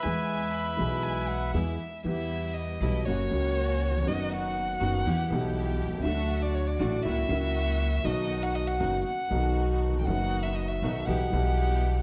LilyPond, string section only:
\new Staff \with { instrumentName = "String section" } { \time 4/4 \key e \major \tempo 4 = 120 <gis b e'>4. <gis b e'>4. <gis b e'>8 r8 | \key e \minor <g b e'>4. <g b e'>8 <ais cis' fis'>8 <ais cis' fis'>4. | <b dis' fis'>4. <b dis' fis'>8 <b e' g'>8 <b e' g'>4. | <a d' fis'>4. <a d' fis'>8 <ais e' fis'>8 <ais e' fis'>4. |
<b dis' fis'>4. <b dis' fis'>8 r8 <b dis' fis'>4. | <b dis' fis'>4. <b dis' fis'>8 <b e' g'>8 <b e' g'>4. | }